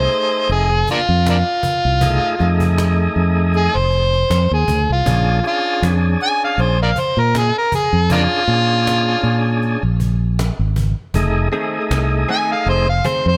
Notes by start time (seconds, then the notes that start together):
Already playing: A3 D#4 G#4 C5
0.11 cajon slap
0.49 F1 G#4, cajon slap
0.87 A#3 D4 F4, cajon bass
1.09 F2
1.26 A#3 D4 F4, cajon slap
1.63 cajon bass
1.85 C2
2.01 A3 D#4 G#4, cajon bass
2.39 F2 A3 D#4 G#4, cajon slap
2.60 cajon bass
2.78 cajon slap
3.16 F2
3.53 G#4, cajon slap
3.75 F1 C5
3.92 cajon slap
4.13 cajon slap
4.30 F2, cajon slap
4.51 D#2 G#4
4.68 D2, cajon bass
4.89 C2 F4
5.06 A#1 C#4 D4 G#4, cajon bass
5.44 C#4 D4 F4 G#4, cajon slap
5.82 F2, cajon slap
6.20 G#5, cajon slap
6.44 F5
6.58 A#1 C5, cajon slap
6.82 A#4 D5 F5
6.96 C5, cajon bass
7.17 A#2 A#4
7.35 G#4, cajon slap
7.58 A#4
7.72 G#4, cajon bass
7.93 F2
8.10 A#3 C#4 D4 F4 G#4, cajon bass
8.48 A#2 C#4 D4 G#4, cajon slap
8.87 cajon slap
9.23 A#2, cajon slap
9.62 cajon slap
9.83 A#1
10.00 cajon bass
10.39 cajon slap
10.59 G#1
10.76 cajon bass
11.14 F1 A3 D#4 G#4, cajon bass
11.52 D#3 A3 C4 D#4 G#4, cajon slap
11.91 C2, cajon slap
12.28 D#3 A3 C4 G#4 G#5, cajon slap
12.52 F5
12.66 F1 C5, cajon slap
12.89 F5
13.05 D#3 A3 C4 G#4 C5, cajon bass
13.26 F2 C5